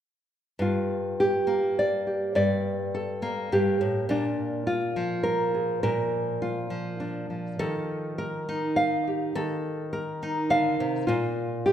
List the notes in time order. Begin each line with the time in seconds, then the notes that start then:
0.59 G2 F4
1.20 G4
1.47 A#3
1.79 D5
2.07 G4
2.35 G2 D5
2.94 A4
3.22 A#3
3.52 G2 G4
3.81 A2
4.09 A#2 D4
4.67 F4
4.96 F3
5.23 A#4
5.55 G#4
5.83 A#2 A#4
6.42 F4
6.70 F3
7.00 D4
7.30 F3
7.59 D#3 A4
8.18 A#4
8.49 D#4
8.76 F5
9.08 G4
9.35 D#3 A4
9.93 A#4
10.23 D#4
10.50 D3 F5
10.80 C3
11.07 A#2 F4
11.66 G4